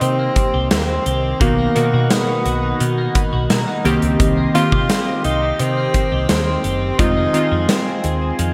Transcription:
0.00 0.27 C3 medium
0.00 1.40 D#3 medium
0.00 1.41 D#3 medium
0.00 0.19 A#3 medium
0.00 1.40 A#3 medium
0.00 0.35 C4 medium
0.00 1.43 C4 medium
0.00 0.71 C4 medium
0.00 0.53 G4 medium
0.00 1.38 G4 medium
0.00 1.42 G4 medium
0.00 8.54 D#5 medium
0.00 1.38 C6 medium
0.00 closed hi-hat medium
0.19 0.71 A#3 medium
0.36 0.87 C4 medium
0.36 kick medium
0.36 closed hi-hat medium
0.54 0.67 C2 medium
0.54 1.05 G4 medium
0.71 1.58 A#3 medium
0.71 0.80 C4 medium
0.71 snare loud
0.71 closed hi-hat medium
0.78 0.87 A#3 medium
0.85 1.41 C4 medium
0.85 1.22 C4 medium
1.06 1.32 C2 medium
1.06 1.48 G4 medium
1.06 closed hi-hat medium
1.23 1.48 C4 medium
1.40 1.67 B1 medium
1.40 1.70 D#3 medium
1.40 2.80 D#3 medium
1.40 1.70 A#3 medium
1.40 2.13 A#3 medium
1.40 1.70 B3 medium
1.40 3.83 F#4 medium
1.40 1.70 F#4 medium
1.40 3.83 F#5 medium
1.40 kick loud
1.40 closed hi-hat medium
1.58 2.10 A#3 medium
1.75 2.92 B2 medium
1.75 2.92 D#3 medium
1.75 2.28 D#4 medium
1.75 2.93 F#4 medium
1.75 2.92 A#4 medium
1.75 closed hi-hat medium
1.93 2.06 B2 medium
1.93 2.44 F#4 medium
2.10 2.97 A#3 medium
2.10 2.81 B3 medium
2.10 snare loud
2.10 closed hi-hat medium
2.28 2.63 D#4 medium
2.46 2.72 B1 medium
2.46 3.31 F#4 medium
2.46 closed hi-hat medium
2.63 3.15 D#4 medium
2.80 3.07 B2 medium
2.80 3.84 D#3 medium
2.80 closed hi-hat medium
2.98 3.50 A#3 medium
3.15 3.67 D#4 medium
3.15 3.48 B5 medium
3.15 kick medium
3.15 closed hi-hat medium
3.33 3.46 B1 medium
3.33 3.92 F#4 medium
3.50 3.63 B2 medium
3.50 4.05 A#3 medium
3.50 3.66 A#5 medium
3.50 snare loud
3.50 closed hi-hat medium
3.67 4.02 D#4 medium
3.67 3.84 F#5 medium
3.85 3.98 C2 medium
3.85 4.43 D#3 medium
3.85 4.19 D#3 medium
3.85 4.43 A#3 medium
3.85 4.44 C4 medium
3.85 6.96 G4 medium
3.85 4.44 G4 medium
3.85 4.18 D#5 medium
3.85 8.54 C6 medium
3.85 closed hi-hat medium
4.02 4.16 C#2 medium
4.02 4.54 C4 medium
4.02 closed hi-hat soft
4.20 4.46 C2 loud
4.20 5.59 D#3 medium
4.20 kick loud
4.20 closed hi-hat medium
4.37 4.89 A#3 medium
4.54 5.71 D#3 medium
4.54 5.72 A#3 medium
4.54 5.07 C4 medium
4.54 5.72 C4 medium
4.54 5.21 F4 loud
4.54 5.72 G4 medium
4.54 closed hi-hat medium
4.72 4.85 C3 loud
4.72 5.23 G4 medium
4.72 kick medium
4.90 5.76 A#3 medium
4.90 snare loud
4.90 closed hi-hat loud
5.07 5.42 C4 medium
5.24 5.51 C2 medium
5.24 5.61 D#4 medium
5.24 6.11 G4 medium
5.24 closed hi-hat medium
5.42 5.94 C4 medium
5.59 5.86 C3 medium
5.59 6.99 D#3 medium
5.59 6.29 C4 loud
5.59 closed hi-hat medium
5.77 6.28 A#3 medium
5.94 6.46 C4 medium
5.94 kick medium
5.94 closed hi-hat medium
6.12 6.25 C2 medium
6.12 6.63 G4 medium
6.29 6.56 D#2 medium
6.29 7.06 A#3 medium
6.29 7.01 C4 medium
6.29 snare loud
6.29 closed hi-hat medium
6.47 6.81 C4 medium
6.64 6.90 F#1 medium
6.64 7.06 G4 medium
6.64 closed hi-hat medium
6.82 7.34 C4 medium
6.98 7.25 F1 loud
6.98 7.28 D#3 medium
6.98 8.39 D#3 medium
6.98 7.28 G#3 medium
6.98 7.28 C4 medium
6.98 7.71 D#4 medium
6.98 8.54 F4 medium
6.98 7.29 F4 medium
6.98 8.54 G#5 medium
6.98 kick loud
6.98 closed hi-hat medium
7.17 7.68 G#3 medium
7.33 8.50 D#3 medium
7.33 8.51 G#3 medium
7.33 7.86 C4 medium
7.33 8.51 C4 medium
7.33 8.51 F4 medium
7.33 closed hi-hat medium
7.51 7.65 F2 medium
7.51 8.03 G#4 medium
7.69 8.54 G#3 medium
7.69 8.39 C4 medium
7.69 snare loud
7.69 closed hi-hat medium
7.86 8.21 C4 medium
8.04 8.30 D#2 medium
8.04 8.54 G#4 medium
8.04 closed hi-hat medium
8.22 8.54 C4 medium
8.39 8.54 F2 medium
8.39 8.54 D#3 medium
8.39 closed hi-hat medium

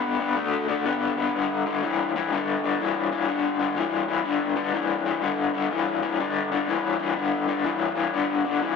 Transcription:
0.00 0.16 D3 medium
0.00 0.17 B3 loud
0.20 0.35 D3 medium
0.20 0.35 B3 medium
0.37 0.65 D3 medium
0.37 0.65 A3 loud
0.68 0.84 D3 medium
0.68 0.84 A3 medium
0.85 1.14 D3 medium
0.85 1.14 B3 loud
1.17 1.32 D3 medium
1.17 1.33 B3 medium
1.35 1.63 G2 medium
1.35 1.63 D3 medium
1.66 1.81 G2 medium
1.66 1.81 D3 medium
1.83 2.11 G2 medium
1.83 2.11 E3 medium
2.16 2.30 G2 medium
2.16 2.30 E3 medium
2.32 2.60 G2 medium
2.32 2.60 D3 medium
2.64 2.78 G2 medium
2.64 2.78 D3 medium
2.80 3.08 G2 medium
2.80 3.08 E3 medium
3.12 3.27 G2 medium
3.12 3.27 E3 medium
3.28 3.56 G2 medium
3.28 3.56 D3 medium
3.59 3.74 G2 medium
3.59 3.75 D3 medium
3.76 4.05 G2 medium
3.76 4.05 E3 medium
4.08 4.23 G2 medium
4.08 4.23 E3 medium
4.24 4.53 G2 medium
4.24 4.53 D3 loud
4.56 4.71 G2 medium
4.56 4.72 D3 medium
4.74 5.02 G2 medium
4.74 5.02 E3 medium
5.05 5.20 G2 medium
5.05 5.21 E3 medium
5.21 5.50 G2 medium
5.21 5.50 D3 loud
5.54 5.69 G2 medium
5.54 5.69 D3 medium
5.71 5.99 G2 medium
5.71 5.99 E3 medium
6.02 6.17 G2 medium
6.02 6.17 E3 medium
6.20 6.47 G2 medium
6.20 6.48 D3 loud
6.52 6.66 G2 medium
6.52 6.66 D3 medium
6.68 6.96 G2 medium
6.68 6.96 E3 medium
6.99 7.14 G2 medium
6.99 7.14 E3 medium
7.16 7.44 G2 medium
7.16 7.44 D3 loud
7.48 7.63 G2 medium
7.48 7.63 D3 medium
7.64 7.92 G2 loud
7.64 7.93 E3 medium
7.95 8.10 G2 medium
7.95 8.11 E3 medium
8.13 8.41 G2 medium
8.13 8.41 D3 medium
8.44 8.59 G2 medium
8.44 8.60 D3 medium
8.61 8.76 G2 medium
8.61 8.76 E3 medium

